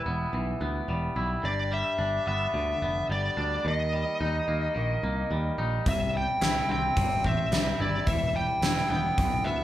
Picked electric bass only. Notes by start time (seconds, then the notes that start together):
0.06 E1
0.33 B1
0.61 D2
0.88 E1
1.16 B1
1.44 G1
1.99 G1
2.27 G1
2.54 D2
2.82 F1
3.09 G1
3.37 D2
3.65 D#2
4.21 D#2
4.48 D#2
4.76 A#1
5.03 C2
5.31 D#2
5.58 A#1
5.86 C2
6.41 C2
6.69 C2
6.97 G1
7.24 A1
7.52 C2
7.80 G1
8.07 E1
8.62 E1
8.90 E1
9.18 B1
9.46 D2